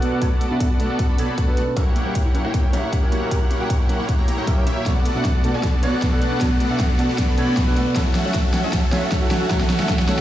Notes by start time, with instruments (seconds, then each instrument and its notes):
Already playing: tine electric piano B2 B3 D4 A4 B4, supersaw synth B3 F#4 A4 D5 F#5, riser
0.02 synth arpeggio sound B3, closed hi-hat
0.12 synth arpeggio sound F#4
0.20 tine electric piano B2 B3 D4 A4 C#5, synth arpeggio sound A3, kick, closed hi-hat
0.32 synth arpeggio sound D5
0.41 synth arpeggio sound A3, closed hi-hat
0.50 tine electric piano B2 B3 D4 A4 E5, synth arpeggio sound D4
0.60 synth arpeggio sound B3, kick, closed hi-hat
0.70 synth arpeggio sound F#4
0.79 tine electric piano B2 B3 D4 A4 D5, synth arpeggio sound A3, closed hi-hat
0.90 supersaw synth B3 F#4 A4 D5 F#5, synth arpeggio sound D5
0.99 synth arpeggio sound A3, kick, closed hi-hat
1.09 supersaw synth B3 F#4 A4 D5 B5, synth arpeggio sound D4
1.17 tine electric piano B2 B3 D4 A4 C#5, synth arpeggio sound B3, closed hi-hat
1.29 synth arpeggio sound F#4
1.37 synth arpeggio sound A3, supersaw synth B3 F#4 A4 D5 F#5, kick, closed hi-hat
1.47 tine electric piano B2 B3 D4 A4 B4, supersaw synth B3 F#4 A4 D5 F#5, synth arpeggio sound D5
1.57 synth arpeggio sound A3, closed hi-hat
1.67 synth arpeggio sound D4
1.76 tine electric piano F#3 C#4 G4 A#4 E5, supersaw synth A#3 E4 G4 C#5 F#5, kick, closed hi-hat
1.86 synth arpeggio sound F#4
1.96 synth arpeggio sound A#3, closed hi-hat
2.05 tine electric piano F#3 C#4 G4 A#4 G5, synth arpeggio sound C#5
2.15 synth arpeggio sound A#3, kick, closed hi-hat
2.25 synth arpeggio sound E4
2.34 tine electric piano F#3 C#4 G4 A#4 F#5, synth arpeggio sound C#4, closed hi-hat
2.44 supersaw synth A#3 E4 G4 C#5 G5, synth arpeggio sound F#4
2.54 synth arpeggio sound A#3, kick, closed hi-hat
2.64 synth arpeggio sound C#5
2.72 tine electric piano F#3 C#4 G4 A#4 E5, synth arpeggio sound A#3, supersaw synth A#3 E4 G4 C#5 F#5, closed hi-hat
2.83 synth arpeggio sound E4
2.92 synth arpeggio sound C#4, kick, closed hi-hat
3.01 tine electric piano F#3 C#4 G4 A#4 C#5, synth arpeggio sound F#4
3.12 synth arpeggio sound A#3, closed hi-hat
3.22 synth arpeggio sound C#5
3.30 tine electric piano F#3 C#4 G4 A#4 E5, kick, closed hi-hat
3.41 synth arpeggio sound E4
3.51 synth arpeggio sound C#4, closed hi-hat
3.60 tine electric piano F#3 C#4 G4 A#4 G5, synth arpeggio sound F#4
3.70 synth arpeggio sound A#3, kick, closed hi-hat
3.80 synth arpeggio sound C#5
3.88 tine electric piano F#3 C#4 G4 A#4 F#5, synth arpeggio sound A#3, closed hi-hat
3.99 supersaw synth A#3 E4 G4 C#5 F#5, synth arpeggio sound E4
4.09 synth arpeggio sound C#4, kick, closed hi-hat
4.19 supersaw synth A#3 E4 G4 C#5 A#5, synth arpeggio sound F#4
4.28 synth arpeggio sound A#3, closed hi-hat
4.38 supersaw synth A#3 E4 G4 C#5 G5, synth arpeggio sound C#5
4.46 tine electric piano F#3 C#4 G4 A#4 E5, synth arpeggio sound A#3, kick, closed hi-hat
4.57 tine electric piano F#3 C#4 G4 A#4 C#5, synth arpeggio sound E4
4.66 supersaw synth A#3 E4 G4 C#5 E5, synth arpeggio sound C#4, closed hi-hat
4.77 synth arpeggio sound F#4
4.85 tine electric piano B2 B3 D4 A4 C#5, synth arpeggio sound A3, supersaw synth B3 F#4 A4 F#5, kick, snare, closed hi-hat
4.96 synth arpeggio sound D5
5.05 synth arpeggio sound A3, closed hi-hat
5.14 tine electric piano B2 B3 D4 A4 E5, synth arpeggio sound D4
5.25 synth arpeggio sound B3, kick, snare, closed hi-hat
5.35 synth arpeggio sound F#4
5.43 tine electric piano B2 B3 D4 A4 D5, synth arpeggio sound A3, closed hi-hat
5.54 supersaw synth B3 F#4 A4 D5 A5, synth arpeggio sound D5
5.63 synth arpeggio sound A3, kick, snare, closed hi-hat
5.73 synth arpeggio sound D4
5.82 tine electric piano B2 B3 D4 A4 C#5, synth arpeggio sound B3, supersaw synth B3 F#4 A4 D5 F#5, closed hi-hat
5.93 synth arpeggio sound F#4
6.02 synth arpeggio sound A3, kick, snare, closed hi-hat
6.11 tine electric piano B2 B3 D4 A4 B4, synth arpeggio sound D5
6.22 synth arpeggio sound A3, closed hi-hat
6.32 synth arpeggio sound D4
6.40 tine electric piano B2 B3 D4 A4 C#5, synth arpeggio sound B3, kick, snare, closed hi-hat
6.51 synth arpeggio sound F#4
6.60 synth arpeggio sound A3, closed hi-hat
6.69 tine electric piano B2 B3 D4 A4 E5, synth arpeggio sound D5
6.80 synth arpeggio sound A3, kick, snare, closed hi-hat
6.90 synth arpeggio sound D4
6.98 tine electric piano B2 B3 D4 A4 D5, synth arpeggio sound B3, closed hi-hat
7.09 supersaw synth B3 F#4 A4 D5 F#5, synth arpeggio sound F#4
7.18 synth arpeggio sound A3, kick, snare, closed hi-hat
7.28 supersaw synth B3 F#4 A4 D5 B5, synth arpeggio sound D5
7.37 tine electric piano B2 B3 D4 A4 C#5, synth arpeggio sound A3, closed hi-hat
7.48 synth arpeggio sound D4
7.57 synth arpeggio sound B3, supersaw synth B3 F#4 A4 D5 F#5, kick, snare, closed hi-hat
7.66 tine electric piano B2 B3 D4 A4 B4, supersaw synth B3 F#4 A4 D5 F#5, synth arpeggio sound F#4
7.76 synth arpeggio sound A3, closed hi-hat
7.86 synth arpeggio sound D5
7.95 tine electric piano F#3 F#4 A4 C#5 E5, synth arpeggio sound A3, supersaw synth C#4 F#4 A4 E5 F#5, kick, snare, closed hi-hat
8.06 synth arpeggio sound E4
8.15 synth arpeggio sound C#4, snare, closed hi-hat
8.24 tine electric piano F#3 F#4 A4 C#5 E5, synth arpeggio sound F#4
8.34 synth arpeggio sound A3, kick, snare, closed hi-hat
8.45 synth arpeggio sound E5
8.53 tine electric piano F#3 F#4 A4 C#5 F#5, synth arpeggio sound A3, snare, closed hi-hat
8.64 supersaw synth C#4 F#4 A4 E5 A5, synth arpeggio sound E4
8.73 synth arpeggio sound C#4, kick, snare, closed hi-hat
8.83 synth arpeggio sound F#4
8.91 tine electric piano F#3 F#4 A4 C#5 E5, synth arpeggio sound A3, supersaw synth C#4 F#4 A4 E5 F#5, snare, closed hi-hat
9.03 synth arpeggio sound E5
9.12 synth arpeggio sound A3, kick, snare, closed hi-hat
9.21 tine electric piano F#3 F#4 A4 C#5 E5, synth arpeggio sound E4
9.31 synth arpeggio sound C#4, snare, closed hi-hat
9.41 synth arpeggio sound F#4
9.49 tine electric piano F#3 F#4 A4 C#5 E5, synth arpeggio sound A3, kick, snare, closed hi-hat
9.61 synth arpeggio sound E5, snare
9.70 synth arpeggio sound A3, snare, closed hi-hat
9.79 tine electric piano F#3 F#4 A4 C#5 E5, synth arpeggio sound E4, snare
9.89 synth arpeggio sound C#4, kick, snare, closed hi-hat
9.99 synth arpeggio sound F#4, snare
10.07 tine electric piano F#3 F#4 A4 C#5 F#5, synth arpeggio sound A3, snare, closed hi-hat